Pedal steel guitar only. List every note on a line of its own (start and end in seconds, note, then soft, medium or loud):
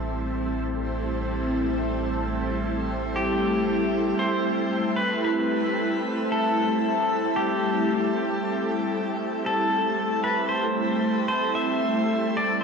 3.16 4.23 G4 medium
4.19 4.96 C5 medium
4.96 5.22 B4 medium
5.25 6.33 B4 medium
6.32 7.39 A4 medium
7.36 9.52 G4 medium
9.46 10.27 A4 medium
10.24 10.48 B4 medium
10.49 11.27 C5 medium
11.28 11.55 C5 medium
11.55 12.37 E5 medium
12.37 12.63 D5 medium